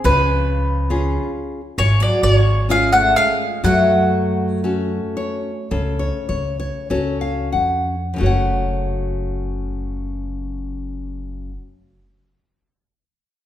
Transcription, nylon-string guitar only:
0, 0, Header, 1, 2, 480
1, 0, Start_track
1, 0, Key_signature, 3, "minor"
1, 0, Tempo, 862069
1, 28, Time_signature, 4, 2, 24, 8
1, 989, Tempo, 911854
1, 1469, Tempo, 944882
1, 1949, Tempo, 996678
1, 2429, Tempo, 1083032
1, 2909, Tempo, 1188119
1, 3389, Tempo, 1321586
1, 5771, End_track
2, 0, Start_track
2, 0, Title_t, "Nylon-string guitar"
2, 0, Program_c, 0, 24
2, 28, Note_on_c, 0, 49, 73
2, 488, Note_off_c, 0, 49, 0
2, 501, Note_on_c, 0, 65, 46
2, 502, Note_on_c, 0, 61, 50
2, 505, Note_on_c, 0, 68, 58
2, 891, Note_off_c, 0, 65, 0
2, 892, Note_off_c, 0, 61, 0
2, 894, Note_off_c, 0, 68, 0
2, 991, Note_on_c, 0, 56, 67
2, 1456, Note_off_c, 0, 56, 0
2, 1469, Note_on_c, 0, 61, 53
2, 1472, Note_on_c, 0, 65, 46
2, 1475, Note_on_c, 0, 68, 64
2, 1853, Note_off_c, 0, 61, 0
2, 1856, Note_off_c, 0, 65, 0
2, 1856, Note_off_c, 0, 68, 0
2, 1951, Note_on_c, 0, 54, 69
2, 2415, Note_off_c, 0, 54, 0
2, 2433, Note_on_c, 0, 61, 47
2, 2434, Note_on_c, 0, 66, 41
2, 2437, Note_on_c, 0, 69, 49
2, 2667, Note_on_c, 0, 73, 62
2, 2815, Note_off_c, 0, 61, 0
2, 2817, Note_off_c, 0, 66, 0
2, 2817, Note_off_c, 0, 69, 0
2, 2894, Note_off_c, 0, 73, 0
2, 2908, Note_on_c, 0, 49, 65
2, 2908, Note_on_c, 0, 69, 63
2, 3016, Note_off_c, 0, 69, 0
2, 3022, Note_on_c, 0, 73, 65
2, 3134, Note_off_c, 0, 73, 0
2, 3141, Note_on_c, 0, 73, 61
2, 3255, Note_off_c, 0, 73, 0
2, 3266, Note_on_c, 0, 73, 66
2, 3374, Note_off_c, 0, 49, 0
2, 3381, Note_off_c, 0, 73, 0
2, 3389, Note_on_c, 0, 61, 51
2, 3390, Note_on_c, 0, 66, 43
2, 3391, Note_on_c, 0, 73, 69
2, 3392, Note_on_c, 0, 69, 51
2, 3496, Note_off_c, 0, 73, 0
2, 3501, Note_on_c, 0, 77, 60
2, 3611, Note_off_c, 0, 77, 0
2, 3616, Note_on_c, 0, 78, 56
2, 3768, Note_off_c, 0, 61, 0
2, 3769, Note_off_c, 0, 66, 0
2, 3770, Note_off_c, 0, 69, 0
2, 3838, Note_on_c, 0, 42, 51
2, 3846, Note_off_c, 0, 78, 0
2, 3847, Note_on_c, 0, 49, 50
2, 3855, Note_on_c, 0, 57, 47
2, 3863, Note_on_c, 0, 66, 50
2, 3873, Note_on_c, 0, 73, 47
2, 3882, Note_on_c, 0, 78, 60
2, 5055, Note_off_c, 0, 42, 0
2, 5065, Note_off_c, 0, 49, 0
2, 5072, Note_off_c, 0, 57, 0
2, 5081, Note_off_c, 0, 66, 0
2, 5091, Note_off_c, 0, 73, 0
2, 5100, Note_off_c, 0, 78, 0
2, 5771, End_track
0, 0, End_of_file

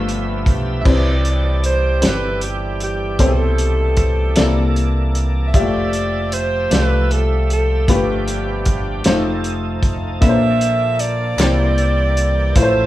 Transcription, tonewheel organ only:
0, 0, Header, 1, 2, 480
1, 0, Start_track
1, 0, Key_signature, 0, "major"
1, 0, Tempo, 779626
1, 530, Time_signature, 6, 3, 24, 8
1, 7920, End_track
2, 0, Start_track
2, 0, Title_t, "Tonewheel organ"
2, 0, Program_c, 0, 16
2, 0, Note_on_c, 0, 53, 60
2, 0, Note_on_c, 0, 57, 53
2, 0, Note_on_c, 0, 59, 52
2, 0, Note_on_c, 0, 67, 62
2, 0, Note_on_c, 0, 76, 53
2, 516, Note_off_c, 0, 53, 0
2, 516, Note_off_c, 0, 59, 0
2, 517, Note_off_c, 0, 57, 0
2, 519, Note_off_c, 0, 67, 0
2, 519, Note_off_c, 0, 76, 0
2, 532, Note_on_c, 0, 52, 53
2, 532, Note_on_c, 0, 62, 48
2, 533, Note_on_c, 0, 55, 46
2, 534, Note_on_c, 0, 67, 59
2, 1957, Note_off_c, 0, 62, 0
2, 1977, Note_on_c, 0, 57, 47
2, 2671, Note_off_c, 0, 55, 0
2, 2671, Note_off_c, 0, 67, 0
2, 2687, Note_off_c, 0, 57, 0
2, 2689, Note_on_c, 0, 58, 52
2, 2695, Note_on_c, 0, 69, 63
2, 2698, Note_on_c, 0, 62, 52
2, 3388, Note_off_c, 0, 52, 0
2, 3403, Note_off_c, 0, 58, 0
2, 3406, Note_off_c, 0, 69, 0
2, 3408, Note_off_c, 0, 62, 0
2, 3409, Note_on_c, 0, 76, 47
2, 3410, Note_on_c, 0, 57, 50
2, 3411, Note_on_c, 0, 67, 60
2, 3412, Note_on_c, 0, 53, 56
2, 4836, Note_off_c, 0, 76, 0
2, 4844, Note_on_c, 0, 62, 50
2, 4852, Note_on_c, 0, 59, 51
2, 5550, Note_off_c, 0, 57, 0
2, 5551, Note_off_c, 0, 67, 0
2, 5561, Note_off_c, 0, 62, 0
2, 5565, Note_off_c, 0, 59, 0
2, 5572, Note_on_c, 0, 69, 60
2, 5575, Note_on_c, 0, 63, 46
2, 5579, Note_on_c, 0, 57, 48
2, 6279, Note_off_c, 0, 69, 0
2, 6286, Note_on_c, 0, 69, 57
2, 6287, Note_off_c, 0, 63, 0
2, 6288, Note_on_c, 0, 58, 48
2, 6289, Note_off_c, 0, 57, 0
2, 6289, Note_on_c, 0, 62, 48
2, 6989, Note_off_c, 0, 53, 0
2, 7002, Note_off_c, 0, 69, 0
2, 7004, Note_off_c, 0, 62, 0
2, 7016, Note_on_c, 0, 55, 49
2, 7020, Note_on_c, 0, 52, 57
2, 7025, Note_on_c, 0, 67, 66
2, 7716, Note_off_c, 0, 58, 0
2, 7728, Note_off_c, 0, 55, 0
2, 7730, Note_off_c, 0, 52, 0
2, 7732, Note_off_c, 0, 67, 0
2, 7734, Note_on_c, 0, 69, 62
2, 7735, Note_on_c, 0, 57, 51
2, 7736, Note_on_c, 0, 53, 56
2, 7738, Note_on_c, 0, 76, 51
2, 7920, Note_off_c, 0, 53, 0
2, 7920, Note_off_c, 0, 57, 0
2, 7920, Note_off_c, 0, 69, 0
2, 7920, Note_off_c, 0, 76, 0
2, 7920, End_track
0, 0, End_of_file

